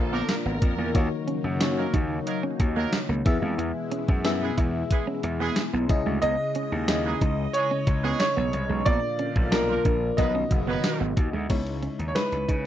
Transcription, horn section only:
0.12 F3 A#3 D4 A#4
1.77 F#3 A#3 D#4 A#4
2.27 F#3 A#3 D#4 A#4
2.76 F#3 A#3 D#4 A#4
4.41 E3 G#3 B3 G#4
4.91 E3 G#3 B3 G#4
5.40 E3 G#3 B3 G#4
7.05 E3 G#3 D#4 G#4
7.54 E3 G#3 D#4 G#4
8.04 E3 G#3 D#4 G#4
9.69 F3 A#3 D4 A#4
10.18 F#3 B3 D#4 B4
10.68 F#3 B3 D#4 B4

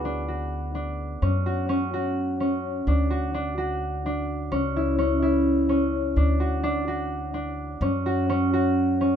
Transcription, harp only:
Already playing: B3 E4 F#4 G#4
0.05 D4
0.28 F#4
0.75 D4
1.22 C#4
1.46 F#4
1.69 C#4
1.94 F#4
2.40 C#4
2.88 D4
3.10 F#4
3.34 D4
3.58 F#4
4.06 D4
4.52 C#4
4.76 E4
4.99 C#4
5.22 E4
5.69 C#4
6.17 D4
6.40 F#4
6.63 D4
6.88 F#4
7.34 D4
7.82 C#4
8.06 F#4
8.29 C#4
8.53 F#4
9.01 C#4

